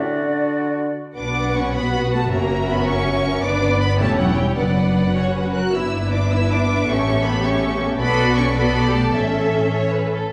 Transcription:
0.00 0.98 D3 soft
0.00 0.98 D4 soft
0.00 0.98 F#4 soft
0.00 0.97 D5 soft
1.17 2.28 B1 soft
1.17 2.29 B3 soft
1.17 1.54 D4 soft
1.17 3.41 F#4 soft
1.17 2.29 B4 soft
1.17 2.29 F#5 soft
1.17 1.54 D6 medium
1.56 1.76 C#4 soft
1.56 1.76 C#6 medium
1.75 2.14 B3 soft
1.75 2.13 B5 medium
2.13 2.32 A3 soft
2.13 2.32 A5 medium
2.32 3.44 F#1 soft
2.32 2.69 A#3 soft
2.32 3.41 C#4 soft
2.32 3.41 A#4 soft
2.32 3.40 E5 soft
2.32 2.69 A#5 medium
2.69 2.88 B3 medium
2.69 2.88 B5 medium
2.88 3.44 C#4 medium
2.88 3.43 C#6 medium
3.43 3.99 G1 medium
3.43 3.97 B3 medium
3.43 3.82 D4 medium
3.43 3.97 D4 medium
3.43 3.96 B4 medium
3.43 3.96 D5 medium
3.43 3.82 D6 medium
3.81 4.00 B3 medium
3.81 4.00 B5 medium
4.00 4.57 E1 medium
4.00 4.19 A3 medium
4.00 4.54 C#4 medium
4.00 4.54 E4 medium
4.00 4.54 G4 medium
4.00 4.54 C#5 medium
4.00 4.19 A5 medium
4.19 4.27 F#3 medium
4.19 4.38 F#5 medium
4.38 4.46 G3 soft
4.38 4.57 G5 medium
4.58 5.55 F#1 soft
4.58 5.53 F#3 soft
4.58 5.12 B3 soft
4.58 5.12 D4 soft
4.58 5.12 B4 soft
4.58 5.12 D5 soft
4.58 5.53 F#5 medium
5.15 5.52 C#4 soft
5.15 5.52 F#4 soft
5.15 5.34 C#5 medium
5.36 5.55 B4 soft
5.55 5.74 F#4 soft
5.55 5.75 A#4 soft
5.55 5.74 F#6 medium
5.74 6.85 G1 soft
5.74 7.96 B3 soft
5.74 6.85 D4 soft
5.74 6.13 E4 soft
5.74 6.85 B4 soft
5.74 7.97 E5 soft
5.74 6.13 E6 medium
6.13 6.32 D4 medium
6.13 6.32 D6 medium
6.32 6.51 E4 medium
6.32 6.51 E6 medium
6.51 6.89 D4 medium
6.51 6.89 D6 medium
6.88 7.98 A1 medium
6.88 7.26 C#4 medium
6.88 7.96 G4 soft
6.88 7.96 A4 soft
6.88 7.26 C#6 medium
7.25 7.44 B3 medium
7.25 7.45 B5 medium
7.44 7.81 C#4 medium
7.44 7.81 C#6 medium
7.99 9.11 B1 medium
7.99 8.35 B3 medium
7.99 8.53 B3 medium
7.99 8.53 F#4 medium
7.99 8.53 A4 medium
7.99 8.53 D5 medium
7.99 8.35 B5 medium
8.37 8.45 C#4 medium
8.37 8.56 C#6 medium
8.56 9.15 B3 medium
8.56 8.95 B3 medium
8.56 8.85 F#4 medium
8.56 9.14 A4 medium
8.56 9.15 D5 medium
8.56 8.95 B5 medium
8.86 9.16 G4 soft
8.95 9.15 A3 soft
8.95 9.15 A5 medium
9.15 10.16 A1 soft
9.15 10.16 E3 soft
9.15 10.14 C#4 soft
9.15 9.71 A4 soft
9.15 10.14 A4 soft
9.15 10.16 E5 medium
9.15 9.72 E5 soft
9.74 9.94 C#5 medium
9.95 10.16 B4 soft
10.15 10.32 A4 soft

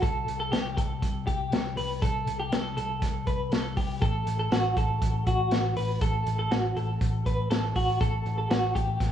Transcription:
0.02 0.23 C2 medium
0.02 0.38 A4 medium
0.02 kick loud
0.02 closed hi-hat medium
0.27 0.48 C2 medium
0.27 closed hi-hat medium
0.40 0.51 A4 medium
0.52 0.73 C2 medium
0.52 0.77 G4 medium
0.52 snare medium
0.52 closed hi-hat medium
0.77 0.98 C2 medium
0.77 1.24 A4 medium
0.77 kick medium
0.77 closed hi-hat medium
1.02 1.23 C2 medium
1.02 kick medium
1.02 closed hi-hat medium
1.27 1.48 C2 medium
1.27 1.74 G4 medium
1.27 kick medium
1.27 closed hi-hat medium
1.52 1.73 C2 medium
1.52 snare medium
1.52 closed hi-hat medium
1.77 1.98 C2 medium
1.77 2.02 B4 medium
1.77 open hi-hat medium
2.02 2.23 C2 medium
2.02 2.37 A4 medium
2.02 kick loud
2.02 closed hi-hat medium
2.27 2.48 C2 medium
2.27 closed hi-hat medium
2.39 2.52 G4 medium
2.52 2.73 C2 medium
2.52 2.76 A4 medium
2.52 snare loud
2.52 closed hi-hat medium
2.77 2.98 C2 medium
2.77 3.24 A4 medium
2.77 closed hi-hat medium
3.02 3.23 C2 medium
3.02 kick medium
3.02 snare soft
3.02 closed hi-hat medium
3.27 3.48 C2 medium
3.27 3.52 B4 medium
3.27 kick medium
3.27 closed hi-hat soft
3.52 3.73 C2 medium
3.52 3.76 A4 medium
3.52 snare medium
3.52 closed hi-hat medium
3.77 3.98 C2 medium
3.77 4.01 G4 medium
3.77 kick medium
3.77 open hi-hat medium
4.02 4.23 A1 medium
4.02 4.37 A4 medium
4.02 kick loud
4.02 closed hi-hat medium
4.27 4.47 A1 medium
4.27 closed hi-hat medium
4.40 4.52 A4 medium
4.52 4.72 A1 medium
4.52 4.77 F#4 medium
4.52 snare medium
4.52 closed hi-hat medium
4.77 4.97 A1 medium
4.77 5.24 A4 medium
4.77 kick medium
4.77 closed hi-hat medium
5.02 5.22 A1 medium
5.02 kick medium
5.02 closed hi-hat medium
5.27 5.47 A1 medium
5.27 5.74 F#4 medium
5.27 kick medium
5.27 closed hi-hat medium
5.51 5.72 A1 medium
5.51 snare medium
5.51 closed hi-hat medium
5.76 5.97 A1 medium
5.76 6.01 B4 medium
5.76 open hi-hat medium
6.01 6.22 A1 medium
6.01 6.37 A4 medium
6.01 kick loud
6.01 closed hi-hat medium
6.26 6.47 A1 medium
6.26 closed hi-hat medium
6.39 6.51 A4 medium
6.51 6.72 A1 loud
6.51 6.76 F#4 medium
6.51 snare loud
6.51 closed hi-hat medium
6.76 6.96 A1 medium
6.76 7.23 A4 medium
6.76 closed hi-hat medium
7.01 7.21 A1 loud
7.01 kick medium
7.01 closed hi-hat medium
7.26 7.47 A1 medium
7.26 7.50 B4 medium
7.26 kick medium
7.26 closed hi-hat medium
7.51 7.71 A1 medium
7.51 7.76 A4 medium
7.51 snare loud
7.51 closed hi-hat medium
7.76 7.96 A1 loud
7.76 8.00 F#4 medium
7.76 kick medium
7.76 open hi-hat medium
8.01 8.21 A1 medium
8.01 8.36 A4 loud
8.01 kick loud
8.01 closed hi-hat medium
8.25 8.46 A1 medium
8.25 closed hi-hat medium
8.38 8.50 A4 medium
8.50 8.71 A1 medium
8.50 8.75 F#4 medium
8.50 snare loud
8.50 closed hi-hat medium
8.75 8.96 A1 medium
8.75 9.12 G4 medium
8.75 kick medium
8.75 closed hi-hat medium
9.00 9.12 A1 medium
9.00 kick medium
9.00 snare soft
9.00 closed hi-hat medium

